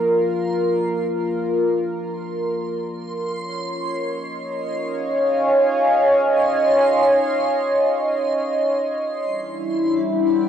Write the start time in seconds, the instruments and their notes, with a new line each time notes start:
Already playing: analog synth pad F4 A#4 D5, synth texture C6
3.34 analog synth pad C#5
3.91 analog synth pad D#5
4.59 analog synth pad F5
4.68 analog synth pad G#5
9.21 synth drone G3 D4, synth texture A5
9.26 analog synth pad E4
9.57 analog synth pad E5
9.63 analog synth pad B5
10.06 analog synth pad F#5 G5